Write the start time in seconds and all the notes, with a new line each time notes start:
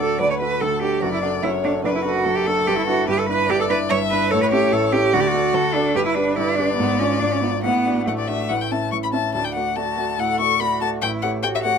Already playing: D2 D3 D5
0.00 D4 F#4 A4
0.20 D2 D3 B4 D5
0.31 C#5
0.40 D4 F#4 A4 B4
0.60 D2 D3 A4
0.82 D4 F#4 G4 A4
1.02 F#1 F#2 F#4 D5
1.12 E4
1.22 D4 F#4 A4
1.43 F#1 F#2 E4 C#5
1.64 D4 F#4 A4
1.84 F#1 F#2 D4 B4
1.95 E4
2.05 D4 F#4 A4
2.26 F#1 F#2 A4
2.37 G4
2.47 D4 F#4 A4
2.67 G1 G2 G4
2.78 E4
2.88 D4 E4 F#4 B4
3.07 G1 G2 G4 B4
3.19 A4
3.29 D4 E4 B4
3.48 G1 G2 G4 D5
3.60 A4
3.70 D4 E4 B4
3.90 G1 G2 C#5 E5
4.10 D4 E4 B4
4.31 A1 A2 A4 C#5
4.42 B4
4.52 C#4 E4 G4 A4
4.72 A1 A2 A4
4.92 C#4 E4 G4 A4
5.13 D2 D3 F#4 D5
5.20 G4
5.27 F#4
5.34 D4 F#4 A4
5.54 D2 D3 A4
5.75 D4 F#4 A4
5.95 G1 G2 G4 B4
6.06 E4
6.15 D4 G4 B4
6.36 G1 G2 E4 D5
6.56 D4 G4 B4
6.77 G#1 G#2 B3
6.99 C#4 D4 F4 D5
7.20 G#1 G#2 D4
7.32 C#4
7.42 B3 D4 F4 D5
7.63 A1 A2 B3 F#5
7.86 D4 F#4 D5
8.06 A1 A2 A3 F#5
8.18 D5
8.28 D4 F#4 D5 E5
8.50 A1 A2 F#5
8.61 G5
8.72 C#4 E4 E5 A5
8.92 A1 A2 C#6
9.03 B5
9.13 C#4 E4 E5 A5
9.35 D2 D4 A5
9.45 G5
9.54 A3 F#4 D5 F#5
9.76 A3 F#4 D5 A5
9.97 A3 F#4 D5
10.18 A2 A4 F#5
10.39 A3 F#4 D5 C#6
10.60 A3 F#4 D5 B5
10.81 A3 F#4 D5 A5
11.02 A1 E4 G5
11.22 A3 G4 C#5 F#5
11.43 A3 F#4 G4 C#5 G5
11.55 E5
11.64 A3 G4 C#5 F#5